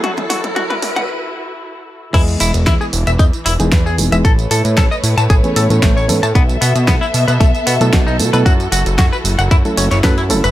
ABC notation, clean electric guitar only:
X:1
M:4/4
L:1/16
Q:"Swing 16ths" 1/4=114
K:E
V:1 name="Clean electric guitar"
F z F z F B z f z8 | E z E z E G z e D z E z E, G z e | A z A z A d z a G z A z A, c z a | B, z B, z B, E z B A, z B, z B,, D z B |
F z F z F B z f E z C c B E z B |]